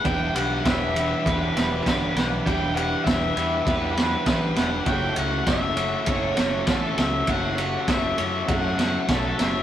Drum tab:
RD |xxxxxxxx|xxxxxxxx|xxxxxxxx|xxxxxxxx|
SD |--o--ooo|--o--ooo|--o--ooo|--o--ooo|
BD |o-o-o-o-|o-o-o-o-|o-o-o-o-|o-o-o-o-|